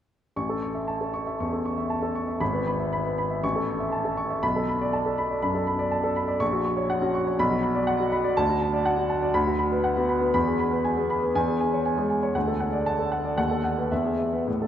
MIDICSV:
0, 0, Header, 1, 2, 480
1, 0, Start_track
1, 0, Key_signature, 3, "major"
1, 0, Tempo, 510638
1, 341, Time_signature, 4, 2, 24, 8
1, 3225, Tempo, 493421
1, 8985, Tempo, 500417
1, 11865, Tempo, 511509
1, 12825, Tempo, 550459
1, 13956, End_track
2, 0, Start_track
2, 0, Title_t, "Grand piano"
2, 0, Program_c, 0, 0
2, 342, Note_on_c, 0, 33, 52
2, 343, Note_on_c, 0, 85, 57
2, 465, Note_on_c, 0, 69, 43
2, 516, Control_c, 0, 64, 127
2, 534, Note_off_c, 0, 85, 0
2, 585, Note_on_c, 0, 85, 45
2, 656, Note_off_c, 0, 69, 0
2, 703, Note_on_c, 0, 76, 42
2, 777, Note_off_c, 0, 85, 0
2, 824, Note_on_c, 0, 81, 47
2, 898, Note_off_c, 0, 76, 0
2, 950, Note_on_c, 0, 69, 40
2, 1020, Note_off_c, 0, 81, 0
2, 1068, Note_on_c, 0, 85, 47
2, 1144, Note_off_c, 0, 69, 0
2, 1193, Note_on_c, 0, 76, 43
2, 1262, Note_off_c, 0, 85, 0
2, 1281, Note_off_c, 0, 33, 0
2, 1318, Note_on_c, 0, 40, 43
2, 1318, Note_on_c, 0, 85, 48
2, 1383, Note_off_c, 0, 76, 0
2, 1435, Note_on_c, 0, 69, 42
2, 1504, Note_off_c, 0, 40, 0
2, 1504, Note_off_c, 0, 85, 0
2, 1555, Note_on_c, 0, 85, 46
2, 1621, Note_off_c, 0, 69, 0
2, 1671, Note_on_c, 0, 76, 46
2, 1740, Note_off_c, 0, 85, 0
2, 1786, Note_on_c, 0, 81, 46
2, 1858, Note_off_c, 0, 76, 0
2, 1903, Note_on_c, 0, 69, 44
2, 1975, Note_off_c, 0, 81, 0
2, 2024, Note_on_c, 0, 85, 43
2, 2094, Note_off_c, 0, 69, 0
2, 2141, Note_on_c, 0, 76, 44
2, 2214, Note_off_c, 0, 85, 0
2, 2260, Note_on_c, 0, 32, 54
2, 2261, Note_off_c, 0, 76, 0
2, 2261, Note_on_c, 0, 83, 60
2, 2279, Control_c, 0, 64, 0
2, 2382, Note_on_c, 0, 71, 45
2, 2445, Control_c, 0, 64, 127
2, 2454, Note_off_c, 0, 83, 0
2, 2507, Note_on_c, 0, 83, 46
2, 2575, Note_off_c, 0, 71, 0
2, 2629, Note_on_c, 0, 76, 43
2, 2699, Note_off_c, 0, 83, 0
2, 2751, Note_on_c, 0, 83, 52
2, 2821, Note_off_c, 0, 76, 0
2, 2871, Note_on_c, 0, 71, 43
2, 2942, Note_off_c, 0, 83, 0
2, 2991, Note_on_c, 0, 83, 46
2, 3062, Note_off_c, 0, 71, 0
2, 3108, Note_on_c, 0, 76, 42
2, 3179, Note_off_c, 0, 83, 0
2, 3195, Note_off_c, 0, 32, 0
2, 3225, Note_off_c, 0, 76, 0
2, 3228, Note_on_c, 0, 33, 56
2, 3230, Note_on_c, 0, 85, 68
2, 3244, Control_c, 0, 64, 0
2, 3348, Note_on_c, 0, 69, 46
2, 3376, Control_c, 0, 64, 127
2, 3419, Note_off_c, 0, 85, 0
2, 3472, Note_on_c, 0, 85, 45
2, 3537, Note_off_c, 0, 69, 0
2, 3586, Note_on_c, 0, 76, 49
2, 3660, Note_off_c, 0, 85, 0
2, 3704, Note_on_c, 0, 81, 48
2, 3779, Note_off_c, 0, 76, 0
2, 3826, Note_on_c, 0, 69, 46
2, 3900, Note_off_c, 0, 81, 0
2, 3947, Note_on_c, 0, 85, 47
2, 4023, Note_off_c, 0, 69, 0
2, 4074, Note_on_c, 0, 76, 49
2, 4146, Note_off_c, 0, 85, 0
2, 4169, Note_off_c, 0, 33, 0
2, 4195, Note_on_c, 0, 83, 70
2, 4197, Note_off_c, 0, 76, 0
2, 4197, Note_on_c, 0, 35, 56
2, 4213, Control_c, 0, 64, 0
2, 4325, Note_on_c, 0, 69, 45
2, 4376, Control_c, 0, 64, 127
2, 4392, Note_off_c, 0, 83, 0
2, 4446, Note_on_c, 0, 83, 49
2, 4516, Note_off_c, 0, 69, 0
2, 4571, Note_on_c, 0, 74, 50
2, 4636, Note_off_c, 0, 83, 0
2, 4684, Note_on_c, 0, 81, 53
2, 4758, Note_off_c, 0, 74, 0
2, 4810, Note_on_c, 0, 69, 46
2, 4875, Note_off_c, 0, 81, 0
2, 4926, Note_on_c, 0, 83, 52
2, 4998, Note_off_c, 0, 69, 0
2, 5049, Note_on_c, 0, 74, 45
2, 5118, Note_off_c, 0, 83, 0
2, 5135, Note_off_c, 0, 35, 0
2, 5164, Note_on_c, 0, 83, 57
2, 5165, Note_on_c, 0, 42, 51
2, 5241, Note_off_c, 0, 74, 0
2, 5284, Note_on_c, 0, 69, 47
2, 5359, Note_off_c, 0, 42, 0
2, 5359, Note_off_c, 0, 83, 0
2, 5402, Note_on_c, 0, 83, 50
2, 5479, Note_off_c, 0, 69, 0
2, 5520, Note_on_c, 0, 74, 50
2, 5597, Note_off_c, 0, 83, 0
2, 5641, Note_on_c, 0, 81, 51
2, 5716, Note_off_c, 0, 74, 0
2, 5760, Note_on_c, 0, 69, 51
2, 5835, Note_off_c, 0, 81, 0
2, 5881, Note_on_c, 0, 83, 51
2, 5953, Note_off_c, 0, 69, 0
2, 5996, Note_on_c, 0, 74, 52
2, 6072, Note_off_c, 0, 83, 0
2, 6114, Note_on_c, 0, 85, 69
2, 6115, Note_on_c, 0, 34, 61
2, 6118, Note_off_c, 0, 74, 0
2, 6139, Control_c, 0, 64, 0
2, 6238, Note_on_c, 0, 66, 50
2, 6304, Control_c, 0, 64, 127
2, 6308, Note_off_c, 0, 85, 0
2, 6355, Note_on_c, 0, 85, 54
2, 6431, Note_off_c, 0, 66, 0
2, 6471, Note_on_c, 0, 73, 50
2, 6550, Note_off_c, 0, 85, 0
2, 6596, Note_on_c, 0, 78, 58
2, 6669, Note_off_c, 0, 73, 0
2, 6715, Note_on_c, 0, 61, 49
2, 6716, Note_on_c, 0, 66, 49
2, 6792, Note_off_c, 0, 78, 0
2, 6838, Note_on_c, 0, 85, 52
2, 6911, Note_off_c, 0, 61, 0
2, 6912, Note_off_c, 0, 66, 0
2, 6957, Note_on_c, 0, 73, 49
2, 7032, Note_off_c, 0, 85, 0
2, 7050, Note_off_c, 0, 34, 0
2, 7079, Note_off_c, 0, 73, 0
2, 7080, Note_on_c, 0, 35, 65
2, 7080, Note_on_c, 0, 83, 75
2, 7100, Control_c, 0, 64, 0
2, 7190, Note_on_c, 0, 66, 49
2, 7238, Control_c, 0, 64, 127
2, 7271, Note_off_c, 0, 83, 0
2, 7311, Note_on_c, 0, 83, 54
2, 7385, Note_off_c, 0, 66, 0
2, 7427, Note_on_c, 0, 74, 54
2, 7505, Note_off_c, 0, 83, 0
2, 7543, Note_on_c, 0, 78, 60
2, 7623, Note_off_c, 0, 74, 0
2, 7666, Note_on_c, 0, 66, 53
2, 7741, Note_off_c, 0, 78, 0
2, 7786, Note_on_c, 0, 83, 52
2, 7863, Note_off_c, 0, 66, 0
2, 7907, Note_on_c, 0, 74, 56
2, 7982, Note_off_c, 0, 83, 0
2, 8006, Note_off_c, 0, 35, 0
2, 8029, Note_on_c, 0, 81, 75
2, 8031, Note_off_c, 0, 74, 0
2, 8031, Note_on_c, 0, 38, 64
2, 8051, Control_c, 0, 64, 0
2, 8151, Note_on_c, 0, 66, 54
2, 8192, Control_c, 0, 64, 127
2, 8223, Note_off_c, 0, 81, 0
2, 8269, Note_on_c, 0, 81, 53
2, 8343, Note_off_c, 0, 66, 0
2, 8386, Note_on_c, 0, 74, 54
2, 8461, Note_off_c, 0, 81, 0
2, 8501, Note_on_c, 0, 78, 59
2, 8578, Note_off_c, 0, 74, 0
2, 8624, Note_on_c, 0, 66, 48
2, 8695, Note_off_c, 0, 78, 0
2, 8737, Note_on_c, 0, 81, 53
2, 8815, Note_off_c, 0, 66, 0
2, 8861, Note_on_c, 0, 74, 54
2, 8931, Note_off_c, 0, 81, 0
2, 8954, Note_off_c, 0, 38, 0
2, 8973, Note_on_c, 0, 38, 67
2, 8974, Note_on_c, 0, 83, 74
2, 8982, Note_off_c, 0, 74, 0
2, 9003, Control_c, 0, 64, 0
2, 9098, Note_on_c, 0, 66, 52
2, 9136, Control_c, 0, 64, 127
2, 9169, Note_off_c, 0, 83, 0
2, 9212, Note_on_c, 0, 83, 51
2, 9292, Note_off_c, 0, 66, 0
2, 9340, Note_on_c, 0, 71, 55
2, 9409, Note_off_c, 0, 83, 0
2, 9451, Note_on_c, 0, 78, 58
2, 9534, Note_off_c, 0, 71, 0
2, 9576, Note_on_c, 0, 59, 50
2, 9576, Note_on_c, 0, 66, 51
2, 9650, Note_off_c, 0, 78, 0
2, 9693, Note_on_c, 0, 83, 50
2, 9771, Note_off_c, 0, 66, 0
2, 9772, Note_off_c, 0, 59, 0
2, 9812, Note_on_c, 0, 71, 54
2, 9889, Note_off_c, 0, 83, 0
2, 9908, Note_off_c, 0, 38, 0
2, 9932, Note_on_c, 0, 40, 61
2, 9933, Note_on_c, 0, 83, 72
2, 9937, Note_off_c, 0, 71, 0
2, 9961, Control_c, 0, 64, 0
2, 10055, Note_on_c, 0, 68, 52
2, 10128, Note_off_c, 0, 83, 0
2, 10136, Control_c, 0, 64, 127
2, 10178, Note_on_c, 0, 83, 53
2, 10249, Note_off_c, 0, 68, 0
2, 10294, Note_on_c, 0, 71, 51
2, 10371, Note_off_c, 0, 83, 0
2, 10418, Note_on_c, 0, 80, 58
2, 10489, Note_off_c, 0, 71, 0
2, 10539, Note_on_c, 0, 68, 46
2, 10540, Note_on_c, 0, 59, 47
2, 10612, Note_off_c, 0, 80, 0
2, 10662, Note_on_c, 0, 83, 53
2, 10734, Note_off_c, 0, 59, 0
2, 10734, Note_off_c, 0, 68, 0
2, 10783, Note_on_c, 0, 71, 50
2, 10856, Note_off_c, 0, 83, 0
2, 10871, Note_off_c, 0, 40, 0
2, 10905, Note_off_c, 0, 71, 0
2, 10906, Note_on_c, 0, 80, 71
2, 10907, Note_on_c, 0, 40, 65
2, 10920, Control_c, 0, 64, 0
2, 11027, Note_on_c, 0, 68, 49
2, 11085, Control_c, 0, 64, 127
2, 11099, Note_off_c, 0, 80, 0
2, 11146, Note_on_c, 0, 80, 52
2, 11219, Note_off_c, 0, 68, 0
2, 11269, Note_on_c, 0, 73, 50
2, 11337, Note_off_c, 0, 80, 0
2, 11386, Note_on_c, 0, 80, 55
2, 11459, Note_off_c, 0, 73, 0
2, 11504, Note_on_c, 0, 56, 45
2, 11504, Note_on_c, 0, 68, 47
2, 11577, Note_off_c, 0, 80, 0
2, 11621, Note_on_c, 0, 80, 48
2, 11695, Note_off_c, 0, 56, 0
2, 11695, Note_off_c, 0, 68, 0
2, 11746, Note_on_c, 0, 73, 52
2, 11814, Note_off_c, 0, 80, 0
2, 11836, Note_off_c, 0, 40, 0
2, 11861, Note_on_c, 0, 78, 52
2, 11863, Note_on_c, 0, 38, 54
2, 11864, Note_off_c, 0, 73, 0
2, 11880, Control_c, 0, 64, 0
2, 11979, Note_on_c, 0, 69, 48
2, 12014, Control_c, 0, 64, 127
2, 12051, Note_off_c, 0, 78, 0
2, 12098, Note_on_c, 0, 78, 49
2, 12170, Note_off_c, 0, 69, 0
2, 12215, Note_on_c, 0, 74, 48
2, 12290, Note_off_c, 0, 78, 0
2, 12342, Note_on_c, 0, 81, 65
2, 12409, Note_off_c, 0, 74, 0
2, 12461, Note_on_c, 0, 69, 42
2, 12533, Note_off_c, 0, 81, 0
2, 12580, Note_on_c, 0, 78, 49
2, 12653, Note_off_c, 0, 69, 0
2, 12704, Note_on_c, 0, 74, 46
2, 12774, Note_off_c, 0, 78, 0
2, 12794, Note_off_c, 0, 38, 0
2, 12823, Note_on_c, 0, 78, 63
2, 12825, Note_off_c, 0, 74, 0
2, 12825, Note_on_c, 0, 39, 53
2, 12841, Control_c, 0, 64, 0
2, 12943, Note_on_c, 0, 69, 44
2, 13006, Control_c, 0, 64, 127
2, 13008, Note_off_c, 0, 78, 0
2, 13054, Note_on_c, 0, 78, 45
2, 13127, Note_off_c, 0, 69, 0
2, 13180, Note_on_c, 0, 71, 42
2, 13242, Note_off_c, 0, 78, 0
2, 13277, Note_off_c, 0, 39, 0
2, 13294, Note_off_c, 0, 71, 0
2, 13294, Note_on_c, 0, 76, 60
2, 13297, Note_on_c, 0, 40, 53
2, 13304, Control_c, 0, 64, 0
2, 13415, Note_on_c, 0, 68, 41
2, 13468, Control_c, 0, 64, 127
2, 13483, Note_off_c, 0, 76, 0
2, 13533, Note_on_c, 0, 76, 43
2, 13606, Note_off_c, 0, 68, 0
2, 13655, Note_on_c, 0, 71, 42
2, 13728, Note_off_c, 0, 76, 0
2, 13766, Note_off_c, 0, 40, 0
2, 13779, Note_off_c, 0, 71, 0
2, 13782, Note_on_c, 0, 45, 50
2, 13782, Note_on_c, 0, 76, 43
2, 13795, Control_c, 0, 64, 0
2, 13907, Note_on_c, 0, 69, 42
2, 13933, Control_c, 0, 64, 127
2, 13956, Note_off_c, 0, 45, 0
2, 13956, Note_off_c, 0, 69, 0
2, 13956, Note_off_c, 0, 76, 0
2, 13956, End_track
0, 0, End_of_file